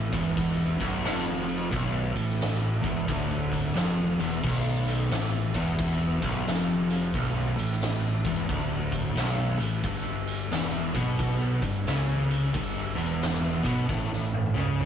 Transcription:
Already playing: A2
0.12 E1 E2, kick, ride
0.37 kick, ride
0.79 B0 B1, kick, ride
1.04 F1 F2, snare, ride
1.48 ride
1.71 B0 B1, kick, ride
2.14 A1 A2, ride
2.30 snare
2.41 snare, ride
2.81 E1 E2, kick, ride
3.07 D1 D2, kick, ride
3.52 kick, ride
3.75 F1 F2, snare, ride
4.18 E1 E2, ride
4.43 B0 B1, kick, crash
4.88 ride
5.10 A1 A2, snare, ride
5.34 snare
5.54 E1 E2, kick, ride
5.79 kick, ride
6.22 B0 B1, kick, ride
6.46 F1 F2, snare, ride
6.90 ride
7.14 B0 B1, kick, ride
7.57 A1 A2, ride
7.72 snare
7.82 snare, ride
8.05 snare
8.24 E1 E2, kick, ride
8.48 D1 D2, kick, ride
8.92 kick, ride
9.15 B0 B1, snare, ride
9.58 A1 A2, ride
9.83 G1 G2, kick, ride
10.27 ride
10.51 E1 E2, snare, ride
10.94 B1 B2, kick, ride
11.19 kick, ride
11.62 G1 G2, kick, ride
11.85 C#2 C#3, snare, ride
12.30 ride
12.53 G1 G2, kick, ride
12.95 E1 E2, ride
13.22 snare, ride
13.45 snare
13.63 B1 B2, kick, ride
13.87 A1 A2, kick, snare
14.13 snare
14.34 high tom
14.46 high tom
14.54 C#2 C#3, mid tom
14.80 mid tom

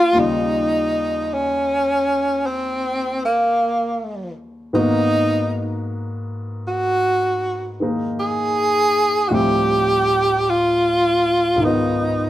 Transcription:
Already playing: D#2 D#3 F3 G3 A#3 C4 D4 F4 G4
0.13 D#2 C#3 D#3 G3
0.19 D#4 F4
1.34 C#4
2.47 C4
3.25 A#3
4.73 G#2 D#3 A#3 B3 D#4 F#4
6.68 F#4
7.80 D#3 G#3 A#3 D#4
8.20 G#4
9.29 D2 A2 F3 G3 C4 F#4 E5
9.34 G4
10.50 F4
11.56 C#2 G#2
11.60 D#3 A#4
11.64 B3 D#4 F4

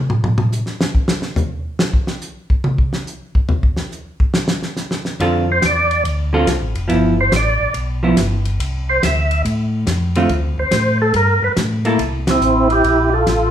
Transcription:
0.10 mid tom
0.24 mid tom
0.38 mid tom
0.52 hi-hat pedal
0.66 snare
0.81 snare
0.95 kick
1.08 snare
1.22 snare
1.36 floor tom, hi-hat pedal
1.79 snare
1.93 kick
2.07 snare
2.21 hi-hat pedal
2.50 kick
2.64 high tom
2.78 kick
2.93 snare
3.07 hi-hat pedal
3.35 kick
3.49 floor tom
3.63 kick
3.77 snare
3.92 hi-hat pedal
4.20 kick
4.34 snare
4.48 snare
4.62 snare
4.77 snare, hi-hat pedal
4.91 snare
5.05 snare
5.20 F2 D3 C4 F4 A4, kick, ride
5.52 C5
5.62 E2 D5, kick, snare, hi-hat pedal, ride
5.91 ride
6.05 D2, kick, ride
6.33 D3 C4 F4 A4
6.47 C2, kick, snare, hi-hat pedal, ride
6.61 A1
6.75 F1, ride
6.88 G1 F3 B3 E4, kick, ride
7.21 C5
7.32 A1, kick, snare, hi-hat pedal, ride
7.36 D5
7.61 A1
7.74 B1, kick, ride
8.03 F3 B3 E4
8.17 G1, kick, snare, hi-hat pedal, ride
8.45 ride
8.60 C2, kick, ride
8.89 C5
9.02 D2 E5, kick, snare, hi-hat pedal, ride
9.31 ride
9.45 A2, kick, ride
9.87 F2, kick, snare, hi-hat pedal, ride
10.15 D3 A3 C4 F4, ride
10.29 D2, kick, ride
10.58 D2 C5
10.71 A2, kick, snare, hi-hat pedal, ride
11.02 A4
11.13 G2 A#4, kick, ride
11.42 G2 B4
11.56 A2, kick, snare, hi-hat pedal, ride
11.85 A#3 E4 A4, ride
11.99 C2, kick, ride
12.27 C4 E4, snare, ride
12.41 A1, hi-hat pedal
12.70 E4 G4, ride
12.84 A#1, kick, ride
13.13 F4 A4
13.27 A1, kick, snare, hi-hat pedal, ride

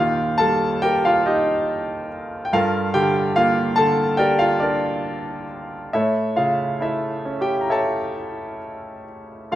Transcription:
Already playing: D#2 A#2 D#3 G4 A#4 F5 G5
0.00 F4
0.38 G3 A4 A5
0.82 G4 A#4 G5
1.05 F4 F5
1.26 D#4 G4 D#5
2.45 G5
2.53 G2 F4 A4 A#4 F5
2.94 D3 G4 G5
3.36 A#3 F4 F5
3.76 D3 A4 A5
4.17 G4 A#4 D5 G5
4.39 F4 F5
4.60 D4 A#4 D5
5.93 A2 E4 A4 C#5 E5
6.36 C#3 F4 F5
6.80 A3 E4 E5
7.25 C#4
7.41 G4 G5
7.61 A#5
7.70 A4 C#5 E5 A5
9.52 D2 F4 A4 F5

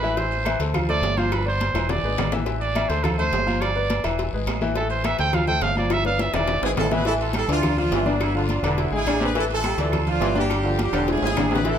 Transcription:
Already playing: A1 B4
0.03 E3 E4 E5, short guiro
0.17 E3 E4 C5 E5, cowbell, high conga, long guiro
0.32 high conga, low agogo
0.45 E3 E4 E5, cowbell, high conga, low timbale, low agogo, short guiro, claves
0.59 D2 A3 A4 C5, cowbell, high conga, short guiro
0.74 F3 F4 F5, cowbell, high conga, low conga, low agogo, long guiro, claves
0.89 A3 A4 C5 D5, high conga, low conga, low agogo
1.02 G1, cowbell, high conga, low timbale, short guiro
1.17 F3 F4 C5 F5, high conga, low agogo, short guiro
1.32 B4, cowbell, low agogo, long guiro, claves
1.45 B3 B4 C5 D5, high conga
1.60 cowbell, high conga, low timbale, low agogo, short guiro
1.74 E1 E3 E4 E5, cowbell, high bongo, low agogo, short guiro, claves
1.89 D5, cowbell, low bongo, high conga, long guiro
2.03 G#1 G#3 G#4 B4, high conga
2.18 A1, cowbell, low bongo, high conga, low timbale, low agogo, short guiro, claves
2.32 E3 E4 E5, low bongo, high conga, short guiro
2.46 E3 E4 E5, cowbell, long guiro
2.61 D5, high conga, low agogo
2.75 E3 E4 E5, cowbell, high conga, low timbale, low agogo, short guiro, claves
2.89 D2 A3 A4 C5, cowbell, high conga, short guiro
3.04 F3 F4 A4 F5, cowbell, high conga, low conga, low agogo, long guiro, claves
3.18 A3 A4 C5, high conga, low conga, low agogo
3.32 G1, cowbell, high conga, low timbale, short guiro
3.47 F3 F4 F5, high conga, low agogo, short guiro
3.61 D5, cowbell, high conga, low agogo, long guiro, claves
3.76 B3 B4 D5, high conga
3.90 cowbell, high conga, low timbale, low agogo, short guiro
4.04 E1 E3 E4 E5, cowbell, low agogo, short guiro, claves
4.18 cowbell, high conga, long guiro
4.33 G#1 G#3 G#4 B4, high conga
4.47 A1, cowbell, high conga, low timbale, low agogo, short guiro, claves
4.61 E3 E4 E5, high conga, short guiro
4.76 E3 E4 A4 E5, cowbell, high conga, long guiro
4.90 C5, high conga, low agogo
5.04 E3 E4 E5, cowbell, high conga, low timbale, low agogo, short guiro, claves
5.19 D2 A3 A4 C5 G5, cowbell, high conga, short guiro
5.33 F3 F4 F5, cowbell, high conga, low conga, low agogo, long guiro, claves
5.47 A3 A4 C5 G5, high conga, low conga, low agogo
5.61 G1 F5, cowbell, high conga, low timbale, short guiro
5.75 F3 F4 D5 F5, high conga, low agogo, short guiro
5.90 E5, cowbell, high bongo, low agogo, long guiro, claves
6.05 B3 B4 D5 F5, high bongo, high conga
6.19 E5, cowbell, high bongo, high conga, low timbale, low agogo, short guiro
6.33 E1 E3 E4 D5 E5, cowbell, low bongo, high timbale, low agogo, short guiro, claves
6.48 cowbell, low bongo, high conga, high timbale, long guiro
6.62 G#1 G#3 E4 G#4 B4, low bongo, high conga, high timbale
6.76 A1 E4 A4, cowbell, low bongo, high conga, low timbale, low agogo, short guiro, claves
6.91 E3 E4 G#4 B4 E5, low bongo, high conga, low timbale, short guiro
7.05 E3 E4 A4 E5, cowbell, long guiro
7.20 F4 A4, high conga, low agogo
7.33 G3 E4 G4 A4 G5, cowbell, high conga, low timbale, low agogo, short guiro, claves
7.48 D2 D3 E3 D4 F4 D5, cowbell, high conga, short guiro
7.63 cowbell, high conga, low conga, low agogo, long guiro, claves
7.77 F3 D4 F4 F5, high conga, low conga, low agogo
7.91 G1 E3, cowbell, high conga, low timbale, short guiro
8.06 D3 B3 D4 D5, high conga, low agogo, short guiro
8.20 B3 E4, cowbell, high conga, low agogo, long guiro, claves
8.34 D3 F3 D4 F4 F5, high conga
8.49 cowbell, high conga, low timbale, low agogo, short guiro
8.63 E1 D3 B3 D4 E4 D5, cowbell, low agogo, short guiro, claves
8.77 cowbell, high conga, long guiro
8.91 G#1 G#3 E4 G#4 G#5, high conga
8.95 G#4
9.06 A1 D3 D4 D5, cowbell, high conga, low timbale, low agogo, short guiro, claves
9.20 C3 G#4, high conga, short guiro
9.24 B4
9.35 E3 E4 A4 E5, cowbell, long guiro
9.50 F4 A4, high conga, low agogo
9.64 G3 G4 G5, cowbell, high conga, low timbale, low agogo, short guiro, claves
9.77 D2 D3 E3 D4 F4 D5, cowbell, high conga, short guiro
9.82 A4
9.92 cowbell, high conga, low conga, low agogo, long guiro, claves
10.07 F3 D4 F4 F5, high conga, low conga, low agogo
10.20 G1 E3, cowbell, high conga, low timbale, short guiro
10.35 D3 D4 G4 D5, high conga, low agogo, short guiro
10.49 cowbell, low agogo, long guiro, claves
10.64 D3 F3 F4 F5, high conga
10.78 D4 G4, cowbell, high conga, low timbale, low agogo, short guiro
10.92 E1 D3 D4 D5, cowbell, high timbale, low agogo, short guiro, claves
11.07 E4 G#4, cowbell, high bongo, high conga, high timbale, long guiro
11.18 G#3, high bongo
11.22 G#1 E4 G#4 G#5, high conga, low timbale
11.27 high bongo
11.36 A1 D3 D4 D5, cowbell, low bongo, high conga, low timbale, low agogo, short guiro, claves
11.50 C3 G#4 B4, high conga, low timbale, short guiro
11.56 low bongo
11.64 E3 E4 A4 E5, cowbell, high conga, long guiro

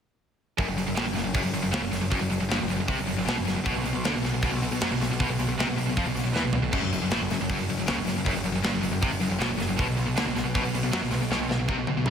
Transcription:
0.58 F#1 F#2, kick, open hi-hat
0.67 F#1 F#2
0.77 F#1 F#2, open hi-hat
0.87 F#1 F#2
0.96 A1 A2, snare, open hi-hat
1.05 F#1 F#2
1.13 F#2, open hi-hat
1.17 F#1, snare
1.24 F#1 F#2
1.34 F#1 F#2, kick, open hi-hat
1.44 F#1 F#2
1.53 F#1 F#2, open hi-hat
1.63 F#1 F#2
1.72 C#2 C#3, snare, open hi-hat
1.81 F#1 F#2
1.91 F#1 F#2, snare, open hi-hat
2.01 F#1 F#2
2.10 F#1 F#2, kick, open hi-hat
2.21 F#1 F#2
2.30 F#1 F#2, open hi-hat
2.40 F#1 F#2
2.49 G1 G2, snare, open hi-hat
2.60 F#1 F#2
2.68 F#1 F#2, open hi-hat
2.76 F#1 F#2
2.88 C2 C3, kick, open hi-hat
2.97 F#1 F#2
3.07 F#1 F#2, open hi-hat
3.17 F#1 F#2
3.25 B1 B2, snare, open hi-hat
3.36 F#1 F#2
3.45 F#1 F#2, snare, open hi-hat
3.55 F#1 F#2
3.64 B1 B2, kick, open hi-hat
3.75 B1 B2
3.84 B1 B2, open hi-hat
3.93 B1 B2
4.04 D2 D3, snare, open hi-hat
4.14 B1 B2
4.23 B1 B2, snare, open hi-hat
4.32 B1 B2
4.42 B1 B2, kick, open hi-hat
4.51 B1 B2
4.62 B1 B2, open hi-hat
4.71 B1 B2
4.81 F#2 F#3, snare, open hi-hat
4.91 B1 B2
5.00 B1 B2, snare, open hi-hat
5.10 B1 B2
5.20 B1 B2, kick, open hi-hat
5.29 B1 B2
5.39 B1 B2, open hi-hat
5.48 B1 B2
5.58 C2 C3, snare, open hi-hat
5.66 B1 B2
5.76 B1 B2, open hi-hat
5.87 B1 B2
5.97 F2 F3, kick, open hi-hat
6.05 B1 B2
6.14 B1 B2, open hi-hat
6.23 B1 B2
6.32 E2 E3, snare
6.44 B1 B2
6.52 B1 B2, floor tom
6.62 B1 B2
6.73 F#1 F#2, kick, crash
6.83 F#1 F#2
6.93 F#1 F#2, open hi-hat
7.02 F#1 F#2
7.10 A1 A2, snare, open hi-hat
7.21 F#1 F#2
7.30 F#1 F#2, snare, open hi-hat
7.40 F#1 F#2
7.49 F#1 F#2, kick, open hi-hat
7.59 F#1 F#2
7.69 F#1 F#2, open hi-hat
7.78 F#1 F#2
7.87 C#2 C#3, snare, open hi-hat
7.97 F#1 F#2
8.05 F#1 F#2, snare, open hi-hat
8.16 F#1 F#2
8.25 F#1 F#2, kick, open hi-hat
8.34 F#1 F#2
8.44 F#1 F#2, open hi-hat
8.52 F#1 F#2
8.62 G1 G2, snare, open hi-hat
8.71 F#1 F#2
8.81 F#1 F#2, open hi-hat
8.91 F#1 F#2
9.01 C2 C3, kick, open hi-hat
9.10 F#1 F#2
9.20 F#1 F#2, open hi-hat
9.31 F#1 F#2
9.39 B1 B2, snare, open hi-hat
9.49 F#1 F#2
9.58 F#1 F#2, snare, open hi-hat
9.69 F#1 F#2
9.78 B1 B2, kick, open hi-hat
9.89 B1 B2
9.97 B1 B2, open hi-hat
10.05 B1 B2
10.16 D2 D3, snare, open hi-hat
10.26 B1 B2
10.36 B1 B2, snare, open hi-hat
10.45 B1 B2
10.55 B1 B2, kick, open hi-hat
10.63 B1 B2
10.73 B1 B2, open hi-hat
10.83 B1 B2
10.92 F#2 F#3, snare, open hi-hat
11.02 B1 B2
11.10 B1 B2, snare, open hi-hat
11.21 B1 B2
11.30 B1 B2, snare
11.39 B1 B2
11.49 B1 B2, snare
11.59 B1 B2
11.68 C2 C3, kick
11.78 B1 B2
11.87 B1 B2, high tom
11.96 B1 B2
12.05 G2 G3, mid tom

